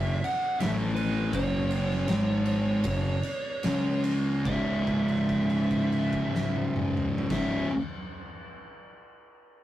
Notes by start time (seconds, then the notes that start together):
Already playing: F#1 F#2 C#3 E5
0.24 F#5, ride
0.60 A1 A2 E3 A3 E5, snare, ride
0.95 B4, ride
1.32 F#1 F#2 C#3 F#3 C#5, kick, ride
1.71 ride
1.90 snare
2.08 G#1 G#2 D#3 G#3, snare, ride
2.46 ride
2.84 F#1 F#2 C#3, kick, ride
3.23 ride
3.63 C#2 C#3 G#3 C#4, snare, ride
4.04 ride
4.45 C#1 C#2 G#2 E5, kick, crash
4.50 C#3
4.87 kick, crash
5.08 crash
5.29 kick, crash
5.50 crash
5.71 kick, crash
5.92 crash
6.13 kick, crash
6.35 snare
6.55 high tom
6.76 mid tom
6.97 mid tom
7.18 floor tom
7.30 C#1 C#2 G#2 E5, kick, snare, crash
7.35 C#3